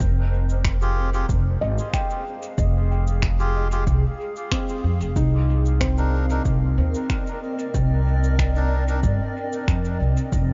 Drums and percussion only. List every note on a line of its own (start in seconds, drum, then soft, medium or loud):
0.00 kick loud
0.00 cabasa medium
0.49 cabasa soft
0.65 finger snap medium
0.65 kick loud
0.65 cabasa medium
0.82 cabasa soft
1.14 cabasa soft
1.29 kick loud
1.29 cabasa medium
1.78 cabasa soft
1.93 finger snap medium
1.93 kick loud
1.93 cabasa medium
2.10 cabasa soft
2.43 cabasa soft
2.58 kick loud
2.58 cabasa medium
3.07 cabasa soft
3.22 finger snap medium
3.22 kick loud
3.22 cabasa soft
3.40 cabasa soft
3.72 cabasa soft
3.87 kick loud
3.87 cabasa soft
4.36 cabasa soft
4.52 finger snap medium
4.52 kick loud
4.52 cabasa soft
4.69 cabasa soft
5.01 cabasa soft
5.16 kick loud
5.16 cabasa soft
5.66 cabasa soft
5.81 finger snap medium
5.81 kick loud
5.81 cabasa soft
5.98 cabasa soft
6.30 cabasa soft
6.45 kick loud
6.45 cabasa soft
6.95 cabasa soft
7.10 finger snap medium
7.10 kick loud
7.10 cabasa soft
7.27 cabasa soft
7.59 cabasa soft
7.74 kick loud
7.74 cabasa medium
8.24 cabasa soft
8.39 finger snap medium
8.39 kick loud
8.39 cabasa medium
8.56 cabasa soft
8.88 cabasa soft
9.03 kick loud
9.03 cabasa soft
9.53 cabasa soft
9.68 finger snap medium
9.68 kick loud
9.68 cabasa medium
9.85 cabasa soft
10.17 cabasa soft
10.32 kick loud
10.32 cabasa medium